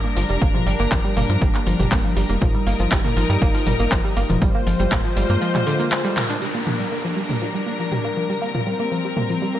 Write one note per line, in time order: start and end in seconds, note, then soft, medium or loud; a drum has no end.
0.00 4.38 G3 medium
0.00 2.38 D4 medium
0.00 2.38 A#4 medium
0.05 0.09 A#3 medium
0.05 tambourine soft
0.17 0.25 G1 loud
0.17 0.27 F3 medium
0.17 open hi-hat loud
0.29 0.37 F1 medium
0.29 0.39 G3 medium
0.29 closed hi-hat medium
0.29 tambourine medium
0.41 0.50 G1 loud
0.41 0.46 A#3 medium
0.41 kick loud
0.41 closed hi-hat medium
0.41 tambourine medium
0.54 0.64 F3 medium
0.54 mid tom medium
0.54 tambourine soft
0.66 0.75 G1 loud
0.66 0.77 G3 medium
0.66 open hi-hat loud
0.79 0.87 G1 medium
0.79 0.84 A#3 medium
0.79 closed hi-hat medium
0.79 tambourine medium
0.91 1.00 G1 loud
0.91 1.02 F3 medium
0.91 kick loud
0.91 clap loud
0.91 closed hi-hat medium
0.91 tambourine medium
1.05 1.14 G3 medium
1.05 tambourine soft
1.17 1.25 G1 loud
1.17 1.21 A#3 medium
1.17 mid tom loud
1.17 open hi-hat loud
1.29 1.37 G2 medium
1.29 1.39 F3 medium
1.29 closed hi-hat medium
1.29 tambourine medium
1.41 1.50 G1 loud
1.41 1.52 G3 medium
1.41 kick loud
1.41 closed hi-hat medium
1.41 tambourine medium
1.54 1.59 A#3 medium
1.54 clap soft
1.54 tambourine soft
1.66 1.75 G1 medium
1.66 1.77 F3 medium
1.66 open hi-hat loud
1.79 1.87 G1 medium
1.79 1.89 G3 medium
1.79 closed hi-hat medium
1.79 mid tom loud
1.79 tambourine medium
1.92 2.00 G1 loud
1.92 1.96 A#3 medium
1.92 kick loud
1.92 clap loud
1.92 closed hi-hat medium
1.92 tambourine medium
2.05 2.14 F3 medium
2.05 tambourine soft
2.16 2.25 G1 loud
2.16 2.27 G3 medium
2.16 open hi-hat loud
2.29 2.37 F1 medium
2.29 2.34 A#3 medium
2.29 closed hi-hat medium
2.29 tambourine medium
2.42 2.50 G1 loud
2.42 2.52 F3 medium
2.42 4.40 D#4 medium
2.42 4.40 A#4 medium
2.42 kick loud
2.42 closed hi-hat medium
2.42 mid tom loud
2.42 tambourine medium
2.55 2.64 G3 medium
2.55 tambourine soft
2.66 2.75 G1 loud
2.66 2.71 A#3 medium
2.66 open hi-hat loud
2.79 2.87 G1 medium
2.79 2.90 F3 medium
2.79 closed hi-hat medium
2.79 tambourine medium
2.92 3.00 G1 loud
2.92 3.02 G3 medium
2.92 kick loud
2.92 clap loud
2.92 closed hi-hat medium
2.92 tambourine medium
3.05 3.09 A#3 medium
3.05 mid tom loud
3.05 tambourine soft
3.17 3.25 G1 medium
3.17 3.27 F3 medium
3.17 open hi-hat loud
3.29 3.37 G2 medium
3.29 3.39 G3 medium
3.29 closed hi-hat medium
3.29 tambourine medium
3.41 3.50 G1 loud
3.41 3.46 A#3 medium
3.41 kick loud
3.41 closed hi-hat medium
3.41 tambourine medium
3.55 3.65 F3 medium
3.55 open hi-hat medium
3.55 tambourine soft
3.67 3.75 G1 medium
3.67 3.77 G3 medium
3.67 mid tom loud
3.67 open hi-hat loud
3.79 3.87 G1 medium
3.79 3.84 A#3 medium
3.79 closed hi-hat medium
3.79 tambourine medium
3.92 4.00 G1 loud
3.92 4.02 F3 medium
3.92 kick loud
3.92 clap loud
3.92 closed hi-hat medium
3.92 tambourine medium
4.04 4.14 G3 medium
4.04 tambourine soft
4.17 4.25 G1 loud
4.17 4.21 A#3 medium
4.17 open hi-hat loud
4.29 4.37 F1 medium
4.29 4.39 F3 medium
4.29 closed hi-hat medium
4.29 mid tom loud
4.29 tambourine medium
4.42 4.50 G1 loud
4.42 4.52 G3 medium
4.42 6.40 G#3 medium
4.42 6.40 F4 medium
4.42 6.40 C5 medium
4.42 kick loud
4.42 closed hi-hat medium
4.42 tambourine medium
4.55 4.59 A#3 medium
4.55 tambourine soft
4.67 4.75 G1 medium
4.67 4.77 F3 medium
4.67 open hi-hat loud
4.79 4.87 G1 medium
4.79 4.90 G3 medium
4.79 closed hi-hat medium
4.79 tambourine medium
4.91 5.00 G1 loud
4.91 4.96 A#3 medium
4.91 kick loud
4.91 clap loud
4.91 closed hi-hat medium
4.91 mid tom medium
4.91 tambourine medium
5.05 5.15 F3 medium
5.05 tambourine soft
5.17 5.25 G1 medium
5.17 5.27 G3 medium
5.17 open hi-hat loud
5.29 5.37 G2 medium
5.29 5.34 A#3 medium
5.29 closed hi-hat medium
5.29 tambourine medium
5.42 5.52 F3 medium
5.42 closed hi-hat medium
5.42 tambourine medium
5.55 5.64 G3 medium
5.55 clap soft
5.55 mid tom loud
5.55 tambourine soft
5.67 5.74 D3 loud
5.67 open hi-hat loud
5.80 5.86 A#3 medium
5.80 closed hi-hat medium
5.80 tambourine medium
5.92 5.96 G#3 loud
5.92 clap loud
5.92 closed hi-hat medium
5.92 tambourine medium
6.05 6.09 G3 loud
6.05 tambourine soft
6.17 6.24 A#4 medium
6.17 clap medium
6.17 mid tom loud
6.17 open hi-hat loud
6.30 6.36 D4 medium
6.30 closed hi-hat medium
6.30 tambourine medium
6.41 9.60 G3 medium
6.41 6.52 G3 medium
6.41 8.40 D4 medium
6.41 9.60 A#4 medium
6.41 tambourine medium
6.41 crash medium
6.41 downlifter medium
6.55 6.59 A#3 medium
6.55 tambourine soft
6.67 6.77 F3 medium
6.67 mid tom medium
6.79 6.89 G3 medium
6.79 tambourine medium
6.92 6.96 A#3 medium
6.92 tambourine medium
7.05 7.15 F3 medium
7.05 tambourine soft
7.17 7.27 G3 medium
7.30 7.34 A#3 medium
7.30 mid tom medium
7.30 tambourine medium
7.42 7.52 F3 medium
7.42 tambourine medium
7.55 7.64 G3 medium
7.55 tambourine soft
7.67 7.71 A#3 medium
7.80 7.89 F3 medium
7.80 tambourine medium
7.92 8.02 G3 medium
7.92 mid tom medium
7.92 tambourine medium
8.04 8.09 A#3 medium
8.04 tambourine soft
8.17 8.27 F3 medium
8.30 8.39 G3 medium
8.30 tambourine medium
8.42 8.46 A#3 medium
8.42 9.60 C4 medium
8.42 tambourine medium
8.54 8.64 F3 medium
8.54 mid tom medium
8.54 tambourine soft
8.67 8.77 G3 medium
8.79 8.84 A#3 medium
8.79 tambourine medium
8.92 9.02 F3 medium
8.92 tambourine medium
9.05 9.15 G3 medium
9.05 tambourine soft
9.17 9.21 A#3 medium
9.17 mid tom medium
9.30 9.40 F3 medium
9.30 tambourine medium
9.42 9.52 G3 medium
9.42 tambourine medium
9.54 9.59 A#3 medium
9.54 tambourine soft